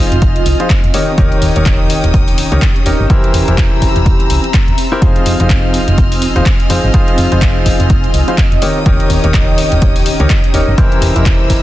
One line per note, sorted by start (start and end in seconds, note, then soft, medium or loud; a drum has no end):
0.00 0.57 F3 medium
0.00 0.94 C4 medium
0.00 0.57 D#4 medium
0.00 0.57 F4 medium
0.00 1.57 F4 medium
0.00 0.57 G#4 medium
0.00 0.57 C5 medium
0.00 0.90 D#5 medium
0.00 3.10 D#5 medium
0.00 0.90 G#5 medium
0.00 0.94 G#5 medium
0.00 0.90 F6 medium
0.12 0.40 F1 loud
0.12 closed hi-hat medium
0.22 kick loud
0.22 closed hi-hat medium
0.36 closed hi-hat soft
0.46 0.55 C2 medium
0.46 open hi-hat loud
0.60 0.68 F3 medium
0.60 0.68 D#4 medium
0.60 0.68 F4 medium
0.60 0.68 G#4 medium
0.60 0.68 C5 medium
0.60 closed hi-hat soft
0.70 kick loud
0.70 clap loud
0.70 closed hi-hat medium
0.84 0.90 F1 medium
0.84 closed hi-hat soft
0.94 1.11 D#3 medium
0.94 3.10 C#4 medium
0.94 1.11 D#4 medium
0.94 1.11 G4 medium
0.94 1.11 A#4 medium
0.94 3.08 C#5 medium
0.94 1.11 C#5 medium
0.94 3.08 G5 medium
0.94 3.08 D#6 medium
0.94 open hi-hat loud
1.18 1.35 D#1 loud
1.18 1.53 D#3 loud
1.18 1.53 D#4 medium
1.18 1.53 G4 medium
1.18 1.53 A#4 medium
1.18 1.53 C#5 loud
1.18 kick loud
1.18 closed hi-hat medium
1.30 5.02 G4 medium
1.30 closed hi-hat soft
1.42 1.51 D#1 loud
1.42 open hi-hat loud
1.56 1.96 D#1 loud
1.56 2.49 D#3 medium
1.56 2.49 D#4 medium
1.56 2.49 G4 medium
1.56 2.49 A#4 medium
1.56 2.49 C#5 medium
1.56 5.61 A#5 medium
1.56 closed hi-hat soft
1.66 kick loud
1.66 clap loud
1.66 closed hi-hat medium
1.90 open hi-hat loud
2.04 2.44 D#1 loud
2.04 closed hi-hat medium
2.14 kick loud
2.14 closed hi-hat medium
2.28 open hi-hat medium
2.38 open hi-hat loud
2.52 2.58 C#2 medium
2.52 2.60 D#3 medium
2.52 2.60 D#4 medium
2.52 2.60 G4 medium
2.52 2.60 A#4 medium
2.52 2.60 C#5 medium
2.52 closed hi-hat soft
2.62 kick loud
2.62 clap loud
2.62 closed hi-hat medium
2.76 closed hi-hat soft
2.86 2.95 D#1 medium
2.86 3.03 D#4 medium
2.86 3.03 G4 medium
2.86 3.03 A#4 medium
2.86 3.03 C#5 medium
2.86 open hi-hat loud
3.00 3.06 G1 medium
3.10 3.44 E3 medium
3.10 8.62 C4 medium
3.10 3.44 E4 medium
3.10 3.44 G4 medium
3.10 3.44 A#4 medium
3.10 3.44 C5 loud
3.10 5.00 C5 medium
3.10 5.00 A#5 medium
3.10 5.00 E6 medium
3.10 kick loud
3.10 closed hi-hat medium
3.24 closed hi-hat soft
3.34 3.43 E1 loud
3.34 open hi-hat loud
3.48 3.88 E1 loud
3.48 4.41 E3 medium
3.48 4.41 E4 medium
3.48 4.41 G4 medium
3.48 4.41 A#4 medium
3.48 4.41 C5 medium
3.48 closed hi-hat soft
3.58 kick loud
3.58 clap loud
3.58 closed hi-hat medium
3.82 kick medium
3.82 open hi-hat loud
3.96 4.24 E1 loud
3.96 closed hi-hat medium
4.06 kick loud
4.06 closed hi-hat medium
4.20 closed hi-hat soft
4.30 4.39 C2 medium
4.30 open hi-hat loud
4.44 closed hi-hat soft
4.54 kick loud
4.54 clap loud
4.54 closed hi-hat medium
4.68 4.74 E1 medium
4.68 closed hi-hat soft
4.78 open hi-hat loud
4.92 5.00 E4 loud
4.92 5.00 G4 medium
4.92 5.00 A#4 medium
4.92 5.00 C5 loud
5.02 5.19 F1 medium
5.02 5.37 F3 medium
5.02 5.37 D#4 medium
5.02 5.37 F4 medium
5.02 5.37 G#4 medium
5.02 5.37 C5 loud
5.02 8.58 D#5 medium
5.02 8.58 G#5 medium
5.02 8.58 F6 medium
5.02 kick loud
5.02 closed hi-hat medium
5.16 closed hi-hat soft
5.23 5.35 F1 loud
5.23 9.50 F4 medium
5.23 10.78 D#5 loud
5.23 open hi-hat loud
5.40 5.80 F1 loud
5.40 6.33 F3 medium
5.40 6.33 D#4 medium
5.40 6.33 F4 medium
5.40 6.33 G#4 medium
5.40 6.33 C5 medium
5.40 closed hi-hat medium
5.50 kick loud
5.50 clap loud
5.50 closed hi-hat medium
5.74 open hi-hat loud
5.88 6.28 F1 loud
5.88 8.62 G#5 medium
5.88 closed hi-hat medium
5.98 kick loud
5.98 closed hi-hat medium
6.12 open hi-hat medium
6.22 open hi-hat loud
6.36 6.42 D#1 medium
6.36 6.44 F3 medium
6.36 6.44 D#4 medium
6.36 6.44 F4 medium
6.36 6.44 G#4 medium
6.36 6.44 C5 medium
6.36 closed hi-hat soft
6.46 kick loud
6.46 clap loud
6.46 closed hi-hat medium
6.60 closed hi-hat soft
6.70 6.79 F1 medium
6.70 6.87 F3 medium
6.70 6.87 D#4 medium
6.70 6.87 F4 medium
6.70 6.87 G#4 medium
6.70 6.87 C5 medium
6.70 open hi-hat loud
6.84 6.90 G#1 medium
6.94 7.29 F3 medium
6.94 7.28 D#4 medium
6.94 7.29 F4 medium
6.94 7.29 G#4 medium
6.94 7.29 C5 loud
6.94 kick loud
6.94 closed hi-hat medium
7.08 closed hi-hat soft
7.18 7.27 F1 loud
7.18 open hi-hat loud
7.32 7.72 F1 loud
7.32 8.25 F3 medium
7.32 8.25 D#4 medium
7.32 8.25 F4 medium
7.32 8.25 G#4 medium
7.32 8.25 C5 medium
7.32 closed hi-hat medium
7.42 kick loud
7.42 clap loud
7.42 closed hi-hat medium
7.66 kick medium
7.66 open hi-hat loud
7.80 8.08 F1 loud
7.80 closed hi-hat medium
7.90 kick loud
7.90 closed hi-hat medium
8.04 closed hi-hat soft
8.14 8.23 C2 medium
8.14 open hi-hat loud
8.28 8.36 F3 medium
8.28 8.36 D#4 medium
8.28 8.36 F4 medium
8.28 8.36 G#4 medium
8.28 8.36 C5 medium
8.28 closed hi-hat soft
8.38 kick loud
8.38 clap loud
8.38 closed hi-hat medium
8.52 8.58 F1 medium
8.52 closed hi-hat soft
8.62 8.79 D#3 medium
8.62 10.78 C#4 medium
8.62 8.79 D#4 medium
8.62 8.79 G4 medium
8.62 8.79 A#4 medium
8.62 8.79 C#5 medium
8.62 10.76 C#5 medium
8.62 10.76 G5 medium
8.62 10.76 D#6 medium
8.62 open hi-hat loud
8.69 11.62 G4 medium
8.86 9.03 D#1 loud
8.86 9.20 D#3 medium
8.86 9.21 D#4 medium
8.86 9.20 G4 medium
8.86 9.21 A#4 medium
8.86 9.21 C#5 loud
8.86 kick loud
8.86 closed hi-hat medium
9.00 closed hi-hat soft
9.10 9.19 D#1 loud
9.10 open hi-hat medium
9.24 9.64 D#1 loud
9.24 10.17 D#3 medium
9.24 10.17 D#4 medium
9.24 10.17 G4 medium
9.24 10.17 A#4 medium
9.24 10.17 C#5 medium
9.24 closed hi-hat medium
9.34 kick loud
9.34 clap loud
9.34 closed hi-hat medium
9.54 11.62 A#5 medium
9.54 open hi-hat medium
9.72 10.12 D#1 loud
9.72 closed hi-hat medium
9.82 kick loud
9.82 closed hi-hat medium
9.96 open hi-hat medium
10.06 open hi-hat loud
10.20 10.26 C#2 medium
10.20 10.28 D#3 medium
10.20 10.28 D#4 medium
10.20 10.28 G4 medium
10.20 10.28 A#4 medium
10.20 10.28 C#5 loud
10.20 closed hi-hat soft
10.30 kick loud
10.30 clap loud
10.30 closed hi-hat medium
10.44 closed hi-hat soft
10.54 10.63 D#1 medium
10.54 10.71 D#4 medium
10.54 10.71 G4 medium
10.54 10.71 A#4 medium
10.54 10.71 C#5 medium
10.54 open hi-hat loud
10.68 10.74 G1 medium
10.78 11.13 E3 loud
10.78 11.13 E4 medium
10.78 11.13 G4 medium
10.78 11.13 A#4 medium
10.78 11.13 C5 loud
10.78 11.62 C5 medium
10.78 11.62 A#5 medium
10.78 11.62 E6 medium
10.78 kick loud
10.78 closed hi-hat medium
10.92 closed hi-hat soft
11.02 11.11 E1 loud
11.02 open hi-hat loud
11.16 11.56 E1 medium
11.16 11.62 E3 medium
11.16 11.62 E4 medium
11.16 11.62 G4 medium
11.16 11.62 A#4 medium
11.16 11.62 C5 medium
11.16 closed hi-hat medium
11.26 kick loud
11.26 clap loud
11.26 closed hi-hat medium
11.50 kick medium
11.50 open hi-hat loud